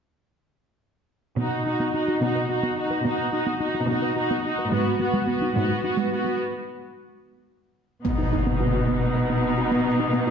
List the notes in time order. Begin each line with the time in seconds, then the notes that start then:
1.39 B2 B3 D#4 F#4
1.66 D#4 F#4
1.80 B3
1.94 D#4 F#4
2.08 F#4
2.22 B2 B3 D#4 F#4
2.35 B4
2.49 D#4 F#4
2.63 B3
2.78 D#4 F#4
2.90 B4
3.05 B2 B3 D#4 F#4
3.32 D#4 F#4
3.46 B3
3.60 D#4 F#4
3.75 F#4
3.88 B2 B3 D#4 F#4
4.02 B4
4.16 D#4 F#4
4.31 B3
4.44 D#4 F#4
4.58 B4
4.71 G#2 G#3 B3 F#4
4.99 B3 F#4
5.13 G#3
5.27 B3 F#4
5.42 D#4
5.55 G#2 G#3 B3 F#4
5.69 F#4
5.83 B3 D#4 F#4
5.97 G#3
6.12 B3 F#4
6.25 F#4
8.05 B2 B3 D#4, impact
8.18 D#4
8.33 D#4
8.47 B3
8.60 F#4
8.74 F#4
8.88 B3
9.16 B4
9.30 B3
9.58 F#4
9.71 B3
9.85 D#4
10.00 D#4
10.13 B3
10.27 F#4